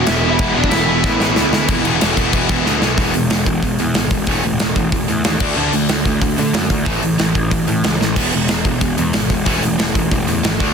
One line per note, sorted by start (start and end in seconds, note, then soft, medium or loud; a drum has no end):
0.00 0.26 E2 medium
0.00 0.23 B2 medium
0.00 0.23 E3 loud
0.06 0.39 E1 medium
0.06 0.25 E2 medium
0.06 0.24 B2 loud
0.06 0.25 E3 loud
0.06 0.24 G#3 loud
0.06 0.24 B3 loud
0.06 0.30 E4 medium
0.06 0.23 E4 loud
0.06 0.29 E5 medium
0.06 snare loud
0.06 crash medium
0.10 0.24 E3 loud
0.24 0.39 E2 medium
0.24 0.40 B2 loud
0.24 0.40 E3 loud
0.24 0.37 E3 medium
0.24 0.38 G#3 medium
0.24 0.38 B3 medium
0.24 0.39 E4 medium
0.30 0.54 E4 medium
0.30 0.56 E5 loud
0.39 0.55 E1 medium
0.39 0.56 E2 loud
0.39 0.56 B2 loud
0.39 0.55 E3 medium
0.39 0.55 E3 loud
0.39 0.55 G#3 medium
0.39 0.54 B3 loud
0.39 0.53 E4 loud
0.39 kick loud
0.39 crash medium
0.53 0.72 E1 medium
0.53 0.70 E3 medium
0.53 0.71 E3 medium
0.53 0.71 G#3 loud
0.53 0.71 B3 medium
0.53 0.71 D4 medium
0.53 0.72 E4 loud
0.53 0.69 D5 medium
0.57 0.70 E2 medium
0.57 0.70 B2 medium
0.64 kick medium
0.69 1.03 E1 loud
0.69 0.88 E2 loud
0.69 0.88 B2 loud
0.69 0.88 E3 medium
0.69 0.87 E3 loud
0.69 0.87 G#3 loud
0.69 0.87 B3 loud
0.69 1.48 E4 medium
0.69 0.87 E4 loud
0.69 1.51 E5 medium
0.69 snare loud
0.69 crash medium
0.88 1.03 E2 medium
0.88 1.04 B2 loud
0.88 1.04 E3 loud
0.88 1.03 E3 medium
0.88 1.03 G#3 medium
0.88 1.04 B3 medium
0.88 1.04 E4 medium
1.04 1.35 A1 medium
1.04 1.21 E2 medium
1.04 1.21 B2 loud
1.04 1.21 E3 medium
1.04 1.20 E3 loud
1.04 1.20 G#3 medium
1.04 1.20 B3 loud
1.04 1.19 E4 loud
1.04 kick loud
1.04 snare medium
1.20 1.35 E2 medium
1.20 1.36 B2 medium
1.20 1.37 E3 medium
1.20 1.35 E3 loud
1.20 1.36 G#3 medium
1.20 1.36 B3 loud
1.20 1.37 E4 loud
1.20 snare medium
1.36 1.52 D2 medium
1.36 1.52 E2 medium
1.36 1.51 B2 medium
1.36 1.53 E3 loud
1.36 1.51 E3 loud
1.36 1.53 G#3 loud
1.36 1.52 B3 loud
1.36 1.52 E4 loud
1.36 snare loud
1.52 1.68 D2 medium
1.52 1.67 E2 medium
1.52 1.68 B2 medium
1.52 1.68 E3 loud
1.52 1.68 E3 medium
1.52 1.68 G#3 medium
1.52 1.68 B3 medium
1.52 1.68 E4 loud
1.52 snare loud
1.68 1.82 E1 medium
1.68 1.84 E2 loud
1.68 1.83 B2 loud
1.68 1.84 E3 loud
1.68 1.83 E3 loud
1.68 1.84 G#3 medium
1.68 1.83 B3 medium
1.68 1.83 E4 loud
1.68 kick loud
1.68 crash medium
1.84 1.98 E1 medium
1.84 1.99 E2 medium
1.84 2.00 B2 medium
1.84 2.01 E3 medium
1.84 2.00 E3 medium
1.84 2.00 G#3 medium
1.84 2.01 B3 medium
1.84 2.01 E4 loud
1.84 crash medium
2.01 2.14 E1 medium
2.01 2.18 E2 medium
2.01 2.17 B2 loud
2.01 2.18 E3 medium
2.01 2.17 E3 loud
2.01 2.18 G#3 medium
2.01 2.17 B3 loud
2.01 2.17 E4 loud
2.01 snare medium
2.01 crash medium
2.17 2.30 E1 loud
2.17 2.32 E2 medium
2.17 2.33 B2 medium
2.17 2.34 E3 loud
2.17 2.32 E3 medium
2.17 2.33 G#3 medium
2.17 2.34 B3 medium
2.17 2.34 E4 medium
2.17 kick medium
2.17 crash medium
2.33 2.46 E1 medium
2.33 2.49 E2 medium
2.33 2.49 B2 loud
2.33 2.50 E3 medium
2.33 2.48 E3 loud
2.33 2.49 G#3 medium
2.33 2.50 B3 medium
2.33 2.49 E4 loud
2.33 kick loud
2.33 crash medium
2.49 2.63 E1 loud
2.49 2.65 E2 medium
2.49 2.65 B2 medium
2.49 2.66 E3 medium
2.49 2.64 E3 medium
2.49 2.65 G#3 medium
2.49 2.65 B3 loud
2.49 2.65 E4 loud
2.49 kick loud
2.49 crash medium
2.65 2.79 D2 medium
2.65 2.81 E2 medium
2.65 2.81 B2 medium
2.65 2.82 E3 medium
2.65 2.80 E3 loud
2.65 2.82 G#3 loud
2.65 2.81 B3 loud
2.65 2.80 E4 loud
2.65 snare medium
2.81 2.95 B1 medium
2.81 2.97 E2 medium
2.81 2.97 B2 medium
2.81 2.97 E3 medium
2.81 2.98 G#3 medium
2.81 2.97 B3 medium
2.81 2.97 E4 medium
2.81 snare loud
2.98 3.11 E1 medium
2.98 3.13 E2 loud
2.98 3.13 B2 loud
2.98 3.13 E3 medium
2.98 3.14 E3 loud
2.98 3.14 G#3 medium
2.98 3.14 B3 medium
2.98 kick loud
2.98 open hi-hat medium
3.14 3.27 E1 medium
3.14 3.29 E2 medium
3.14 3.29 B2 medium
3.14 3.29 E3 medium
3.14 3.29 G#3 medium
3.14 open hi-hat medium
3.30 3.43 E1 medium
3.30 3.45 E2 medium
3.30 3.45 B2 medium
3.30 3.45 E3 medium
3.30 3.45 G#3 medium
3.30 snare medium
3.30 open hi-hat medium
3.46 3.60 E1 medium
3.46 3.61 E2 medium
3.46 3.62 B2 medium
3.46 3.61 E3 medium
3.46 3.61 G#3 medium
3.46 kick medium
3.46 open hi-hat medium
3.62 3.76 E1 medium
3.62 3.78 E2 medium
3.62 3.78 B2 medium
3.62 3.78 E3 medium
3.62 3.78 G#3 medium
3.62 kick loud
3.62 open hi-hat medium
3.79 3.94 E2 medium
3.79 3.93 E2 medium
3.79 3.94 B2 medium
3.79 3.94 E3 medium
3.79 3.94 G#3 medium
3.79 open hi-hat medium
3.94 4.09 G#1 medium
3.94 4.10 E2 medium
3.94 4.10 B2 medium
3.94 4.10 E3 medium
3.94 4.10 G#3 medium
3.94 snare loud
3.94 open hi-hat medium
4.11 4.27 E1 medium
4.11 4.26 E2 medium
4.11 4.26 B2 medium
4.11 4.26 E3 medium
4.11 4.26 G#3 medium
4.11 kick loud
4.11 open hi-hat medium
4.27 4.41 E1 medium
4.27 4.43 A2 loud
4.27 4.42 E3 medium
4.27 4.43 E3 loud
4.27 4.43 A3 medium
4.27 4.44 A3 loud
4.27 4.43 C#4 loud
4.27 kick loud
4.27 open hi-hat medium
4.43 4.57 E1 medium
4.43 4.58 A2 medium
4.43 4.58 E3 medium
4.43 4.59 E3 medium
4.43 4.58 A3 medium
4.43 open hi-hat medium
4.59 4.74 E1 medium
4.59 4.75 A2 medium
4.59 4.75 E3 medium
4.59 4.75 A3 medium
4.59 snare loud
4.59 open hi-hat medium
4.76 4.89 E1 medium
4.76 4.91 A2 medium
4.76 4.91 E3 medium
4.76 4.91 A3 medium
4.76 kick medium
4.76 open hi-hat medium
4.92 5.05 E1 medium
4.92 5.07 A2 medium
4.92 5.07 E3 medium
4.92 5.07 A3 medium
4.92 kick loud
4.92 open hi-hat medium
5.08 5.22 E2 medium
5.08 5.23 A2 medium
5.08 5.23 E3 medium
5.08 5.23 A3 medium
5.08 open hi-hat soft
5.24 5.38 D#2 medium
5.24 5.40 A2 medium
5.24 5.39 E3 medium
5.24 5.40 E3 medium
5.24 5.40 A3 medium
5.24 snare loud
5.24 open hi-hat medium
5.40 5.54 D2 medium
5.40 5.55 D3 medium
5.40 5.55 A3 medium
5.40 5.56 A3 loud
5.40 5.56 D4 loud
5.40 5.56 D4 medium
5.40 kick loud
5.40 crash loud
5.56 5.70 D2 medium
5.56 5.71 D3 loud
5.56 5.72 D3 medium
5.56 5.72 A3 loud
5.56 5.72 A3 medium
5.56 5.72 D4 loud
5.56 5.73 D4 medium
5.73 5.86 D2 medium
5.73 5.87 D3 medium
5.73 5.88 D3 medium
5.73 5.88 A3 medium
5.73 open hi-hat medium
5.89 6.03 D2 medium
5.89 6.04 D3 medium
5.89 6.04 A3 medium
5.89 6.05 A3 medium
5.89 snare loud
5.89 open hi-hat medium
6.05 6.19 D2 medium
6.05 6.20 D3 medium
6.05 6.21 D3 medium
6.05 6.20 A3 medium
6.05 6.21 A3 medium
6.05 kick medium
6.05 open hi-hat medium
6.22 6.35 D2 medium
6.22 6.36 D3 medium
6.22 6.37 D3 medium
6.22 6.36 A3 medium
6.22 6.37 A3 medium
6.22 kick loud
6.22 open hi-hat medium
6.37 6.52 D3 medium
6.37 6.53 D3 medium
6.37 6.52 D3 medium
6.37 6.52 A3 medium
6.37 6.53 A3 loud
6.37 open hi-hat medium
6.53 6.67 F#2 medium
6.53 6.69 D3 medium
6.53 6.69 A3 medium
6.53 snare loud
6.53 open hi-hat medium
6.70 6.84 D2 medium
6.70 6.85 D3 medium
6.70 6.85 A3 medium
6.70 kick medium
6.70 open hi-hat medium
6.85 7.00 A1 medium
6.85 7.01 A2 medium
6.85 7.02 A2 medium
6.85 7.01 E3 loud
6.85 7.02 E3 medium
6.85 7.02 A3 loud
6.85 7.02 A3 medium
6.85 kick loud
6.85 open hi-hat medium
7.03 7.16 A1 medium
7.03 7.17 A2 medium
7.03 7.18 E3 medium
7.03 7.17 E3 medium
7.03 open hi-hat medium
7.18 7.32 A1 medium
7.18 7.33 A2 medium
7.18 7.34 A2 medium
7.18 7.34 E3 medium
7.18 snare medium
7.18 open hi-hat medium
7.35 7.49 A1 loud
7.35 7.50 A2 medium
7.35 7.50 E3 medium
7.35 kick medium
7.35 open hi-hat medium
7.51 7.65 A1 medium
7.51 7.66 A2 medium
7.51 7.66 E3 medium
7.51 kick loud
7.51 open hi-hat medium
7.67 7.82 A2 medium
7.67 7.81 A2 medium
7.67 7.83 A2 medium
7.67 7.83 E3 loud
7.67 7.83 E3 medium
7.67 open hi-hat medium
7.84 7.98 C#2 medium
7.84 7.99 A2 medium
7.84 7.99 E3 medium
7.84 snare loud
7.84 open hi-hat medium
8.00 8.14 A1 medium
8.00 8.15 A2 medium
8.00 8.16 A2 medium
8.00 8.15 E3 medium
8.00 8.16 E3 medium
8.00 snare medium
8.16 8.30 E1 medium
8.16 8.31 E2 medium
8.16 8.32 B2 medium
8.16 8.31 E3 medium
8.16 8.33 E3 loud
8.16 8.31 G#3 medium
8.16 8.33 B3 medium
8.16 kick loud
8.16 open hi-hat medium
8.16 crash loud
8.32 8.47 E1 medium
8.32 8.47 E2 medium
8.32 8.48 B2 medium
8.32 8.47 E3 medium
8.32 8.48 G#3 medium
8.32 open hi-hat medium
8.48 8.63 E1 medium
8.48 8.64 E2 medium
8.48 8.64 B2 medium
8.48 8.63 E3 medium
8.48 8.64 G#3 medium
8.48 snare loud
8.48 open hi-hat medium
8.65 8.79 E1 medium
8.65 8.80 E2 medium
8.65 8.80 B2 medium
8.65 8.80 E3 medium
8.65 8.80 G#3 medium
8.65 kick medium
8.65 open hi-hat medium
8.81 8.95 E1 medium
8.81 8.97 E2 medium
8.81 8.97 B2 medium
8.81 8.96 E3 medium
8.81 8.96 G#3 medium
8.81 kick loud
8.81 open hi-hat medium
8.98 9.13 E2 medium
8.98 9.11 E2 medium
8.98 9.13 B2 medium
8.98 9.12 E3 medium
8.98 9.13 G#3 medium
8.98 open hi-hat medium
9.13 9.28 G#1 medium
9.13 9.29 E2 medium
9.13 9.29 B2 medium
9.13 9.28 E3 medium
9.13 9.29 G#3 medium
9.13 snare loud
9.13 open hi-hat medium
9.30 9.44 E1 medium
9.30 9.45 E2 medium
9.30 9.45 B2 medium
9.30 9.44 E3 medium
9.30 9.45 G#3 medium
9.30 kick medium
9.30 open hi-hat medium
9.45 9.60 E1 medium
9.45 9.62 A2 loud
9.45 9.61 E3 loud
9.45 9.62 E3 loud
9.45 9.62 A3 medium
9.45 9.63 A3 loud
9.45 9.62 C#4 loud
9.45 kick loud
9.45 open hi-hat medium
9.63 9.76 E1 medium
9.63 9.77 A2 medium
9.63 9.78 E3 medium
9.63 9.78 A3 medium
9.63 open hi-hat medium
9.78 9.93 E1 medium
9.78 9.93 A2 medium
9.78 9.93 E3 medium
9.78 9.94 E3 medium
9.78 9.94 A3 medium
9.78 snare loud
9.78 open hi-hat medium
9.94 10.09 E1 medium
9.94 10.10 A2 medium
9.94 10.10 E3 medium
9.94 10.10 A3 medium
9.94 kick medium
9.94 open hi-hat medium
10.11 10.25 E1 medium
10.11 10.26 A2 medium
10.11 10.26 E3 medium
10.11 10.27 A3 medium
10.11 kick loud
10.11 open hi-hat medium
10.27 10.41 E2 medium
10.27 10.42 A2 medium
10.27 10.43 E3 medium
10.27 10.42 E3 medium
10.27 10.43 A3 medium
10.27 open hi-hat medium
10.43 10.57 G#1 medium
10.43 10.59 A2 medium
10.43 10.59 E3 medium
10.43 10.59 A3 medium
10.43 snare loud
10.43 open hi-hat medium
10.59 10.74 D2 medium
10.59 10.74 D3 medium
10.59 10.74 A3 medium
10.59 10.74 D4 medium
10.59 10.74 D4 loud
10.59 kick loud
10.59 open hi-hat medium